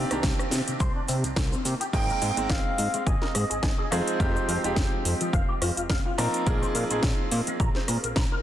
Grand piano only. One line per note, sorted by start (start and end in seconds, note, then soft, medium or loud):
0.11 1.91 D#3 medium
0.11 1.91 A#3 medium
0.11 1.91 C4 medium
0.11 1.91 D4 medium
0.11 1.91 G4 medium
1.94 2.34 G#3 loud
1.94 2.34 A#3 medium
1.94 2.34 C4 medium
1.94 2.34 D#4 medium
1.94 2.34 G5 loud
2.37 3.89 G#3 medium
2.37 3.89 A#3 medium
2.37 3.89 C4 medium
2.37 3.90 D#4 medium
3.92 4.17 F3 loud
3.92 4.17 G#3 medium
3.92 4.17 C4 medium
3.92 4.17 D#4 medium
3.92 4.17 G#4 loud
4.20 4.60 F3 loud
4.20 4.60 G#3 medium
4.20 4.60 C4 medium
4.20 4.60 D#4 medium
4.20 4.61 G4 loud
4.63 6.15 F3 medium
4.63 6.16 G#3 medium
4.63 6.16 C4 medium
4.63 6.16 D#4 medium
4.63 6.16 G4 medium
6.18 6.43 F3 loud
6.18 6.43 A#3 medium
6.18 6.44 C4 medium
6.18 6.44 D#4 medium
6.18 6.44 A#4 loud
6.46 6.86 F3 loud
6.46 6.87 A#3 medium
6.46 6.87 C4 medium
6.46 6.87 D#4 medium
6.46 6.87 G#4 loud
6.90 8.42 F3 medium
6.90 8.42 A#3 medium
6.90 8.42 C4 medium
6.90 8.42 D#4 medium
6.90 8.42 G#4 medium